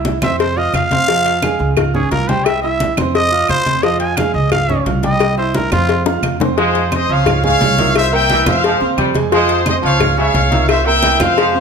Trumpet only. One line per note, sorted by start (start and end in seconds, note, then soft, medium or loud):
0.23 0.39 E5 loud
0.40 0.59 C5 medium
0.58 0.74 D#5 loud
0.75 1.75 F5 loud
1.94 2.11 G#4 loud
2.11 2.30 A#4 loud
2.28 2.47 C5 loud
2.45 2.61 E5 loud
2.62 2.96 E5 loud
3.15 3.48 D#5 loud
3.50 3.85 C5 loud
3.83 3.99 D#5 loud
4.00 4.18 G#5 medium
4.17 4.33 F5 medium
4.34 4.51 D#5 medium
4.52 4.85 F5 loud
5.04 5.37 D#5 loud
5.38 5.57 C5 medium
5.55 5.72 A#4 medium
5.73 6.06 F4 loud